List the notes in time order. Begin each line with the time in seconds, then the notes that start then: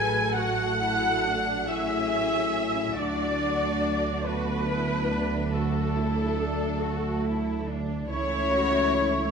Already playing: A1 F#3 A3 G#4 A4 B4 G#5 G#6
0.34 F#4 A4 F#5 F#6
0.80 E4
1.24 D4
1.67 C#4 E4 G#4 E5 E6
2.95 D2 F#3 A3 D4 F#4 D5 D6
4.25 B3 D4 F#4 B4 B5
4.68 E4
5.10 D4
5.53 A3 D4 F#4 A4 A5
5.95 E4
6.37 D4
6.81 F#4
7.24 E4
7.67 D4
8.08 C#2 E3 A3 C#4 E4 C#5 C#6
8.52 F#4
8.93 E4